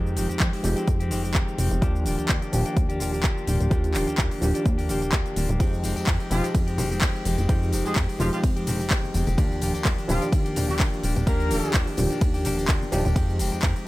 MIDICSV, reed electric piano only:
0, 0, Header, 1, 2, 480
1, 0, Start_track
1, 0, Tempo, 472441
1, 1851, Time_signature, 4, 2, 24, 8
1, 14099, End_track
2, 0, Start_track
2, 0, Title_t, "Reed electric piano"
2, 0, Program_c, 0, 4
2, 0, Note_on_c, 0, 53, 83
2, 0, Note_on_c, 0, 56, 77
2, 0, Note_on_c, 0, 63, 74
2, 0, Note_on_c, 0, 67, 88
2, 621, Note_off_c, 0, 53, 0
2, 624, Note_off_c, 0, 56, 0
2, 626, Note_off_c, 0, 63, 0
2, 629, Note_off_c, 0, 67, 0
2, 641, Note_on_c, 0, 53, 80
2, 647, Note_on_c, 0, 56, 70
2, 652, Note_on_c, 0, 63, 73
2, 658, Note_on_c, 0, 67, 84
2, 1820, Note_off_c, 0, 53, 0
2, 1823, Note_off_c, 0, 56, 0
2, 1826, Note_off_c, 0, 63, 0
2, 1829, Note_off_c, 0, 67, 0
2, 1841, Note_on_c, 0, 53, 81
2, 1847, Note_on_c, 0, 62, 78
2, 1852, Note_on_c, 0, 51, 75
2, 1858, Note_on_c, 0, 67, 91
2, 2540, Note_off_c, 0, 53, 0
2, 2543, Note_off_c, 0, 62, 0
2, 2546, Note_off_c, 0, 51, 0
2, 2549, Note_off_c, 0, 67, 0
2, 2563, Note_on_c, 0, 53, 77
2, 2570, Note_on_c, 0, 62, 68
2, 2575, Note_on_c, 0, 51, 69
2, 2581, Note_on_c, 0, 67, 83
2, 3741, Note_off_c, 0, 53, 0
2, 3745, Note_off_c, 0, 62, 0
2, 3747, Note_off_c, 0, 51, 0
2, 3750, Note_off_c, 0, 67, 0
2, 3763, Note_on_c, 0, 53, 81
2, 3769, Note_on_c, 0, 62, 76
2, 3774, Note_on_c, 0, 51, 76
2, 3781, Note_on_c, 0, 67, 92
2, 4461, Note_off_c, 0, 53, 0
2, 4464, Note_off_c, 0, 62, 0
2, 4467, Note_off_c, 0, 51, 0
2, 4470, Note_off_c, 0, 67, 0
2, 4483, Note_on_c, 0, 53, 77
2, 4488, Note_on_c, 0, 62, 71
2, 4494, Note_on_c, 0, 51, 69
2, 4500, Note_on_c, 0, 67, 82
2, 5661, Note_off_c, 0, 53, 0
2, 5664, Note_off_c, 0, 62, 0
2, 5666, Note_off_c, 0, 51, 0
2, 5669, Note_off_c, 0, 67, 0
2, 5680, Note_on_c, 0, 53, 84
2, 5686, Note_on_c, 0, 56, 76
2, 5692, Note_on_c, 0, 63, 75
2, 5698, Note_on_c, 0, 67, 93
2, 6380, Note_off_c, 0, 53, 0
2, 6383, Note_off_c, 0, 56, 0
2, 6386, Note_off_c, 0, 63, 0
2, 6389, Note_off_c, 0, 67, 0
2, 6404, Note_on_c, 0, 53, 74
2, 6410, Note_on_c, 0, 56, 68
2, 6416, Note_on_c, 0, 63, 68
2, 6421, Note_on_c, 0, 67, 84
2, 7582, Note_off_c, 0, 53, 0
2, 7584, Note_off_c, 0, 56, 0
2, 7587, Note_off_c, 0, 63, 0
2, 7590, Note_off_c, 0, 67, 0
2, 7604, Note_on_c, 0, 53, 80
2, 7609, Note_on_c, 0, 56, 75
2, 7616, Note_on_c, 0, 63, 76
2, 7619, Note_on_c, 0, 67, 91
2, 8301, Note_off_c, 0, 53, 0
2, 8304, Note_off_c, 0, 56, 0
2, 8307, Note_off_c, 0, 63, 0
2, 8309, Note_off_c, 0, 67, 0
2, 8326, Note_on_c, 0, 53, 76
2, 8330, Note_on_c, 0, 56, 69
2, 8336, Note_on_c, 0, 63, 69
2, 8342, Note_on_c, 0, 67, 88
2, 9502, Note_off_c, 0, 53, 0
2, 9505, Note_off_c, 0, 56, 0
2, 9508, Note_off_c, 0, 63, 0
2, 9511, Note_off_c, 0, 67, 0
2, 9522, Note_on_c, 0, 53, 84
2, 9529, Note_on_c, 0, 62, 78
2, 9533, Note_on_c, 0, 51, 73
2, 9539, Note_on_c, 0, 67, 95
2, 10221, Note_off_c, 0, 53, 0
2, 10224, Note_off_c, 0, 62, 0
2, 10226, Note_off_c, 0, 51, 0
2, 10229, Note_off_c, 0, 67, 0
2, 10242, Note_on_c, 0, 53, 78
2, 10247, Note_on_c, 0, 62, 70
2, 10253, Note_on_c, 0, 51, 69
2, 10259, Note_on_c, 0, 67, 83
2, 11420, Note_off_c, 0, 53, 0
2, 11423, Note_off_c, 0, 62, 0
2, 11426, Note_off_c, 0, 51, 0
2, 11429, Note_off_c, 0, 67, 0
2, 11444, Note_on_c, 0, 53, 80
2, 11450, Note_on_c, 0, 62, 76
2, 11455, Note_on_c, 0, 51, 79
2, 11460, Note_on_c, 0, 67, 91
2, 12142, Note_off_c, 0, 53, 0
2, 12144, Note_off_c, 0, 62, 0
2, 12147, Note_off_c, 0, 51, 0
2, 12150, Note_off_c, 0, 67, 0
2, 12163, Note_on_c, 0, 53, 79
2, 12169, Note_on_c, 0, 62, 71
2, 12174, Note_on_c, 0, 51, 73
2, 12179, Note_on_c, 0, 67, 81
2, 13105, Note_off_c, 0, 53, 0
2, 13109, Note_off_c, 0, 62, 0
2, 13111, Note_off_c, 0, 51, 0
2, 13113, Note_off_c, 0, 67, 0
2, 13125, Note_on_c, 0, 53, 95
2, 13128, Note_on_c, 0, 62, 88
2, 13132, Note_on_c, 0, 63, 85
2, 13135, Note_on_c, 0, 67, 107
2, 13270, Note_off_c, 0, 53, 0
2, 13271, Note_off_c, 0, 62, 0
2, 13273, Note_off_c, 0, 63, 0
2, 13274, Note_off_c, 0, 67, 0
2, 13358, Note_on_c, 0, 53, 82
2, 13365, Note_on_c, 0, 56, 74
2, 13369, Note_on_c, 0, 63, 76
2, 13374, Note_on_c, 0, 67, 93
2, 14059, Note_off_c, 0, 53, 0
2, 14062, Note_off_c, 0, 56, 0
2, 14064, Note_off_c, 0, 63, 0
2, 14067, Note_off_c, 0, 67, 0
2, 14099, End_track
0, 0, End_of_file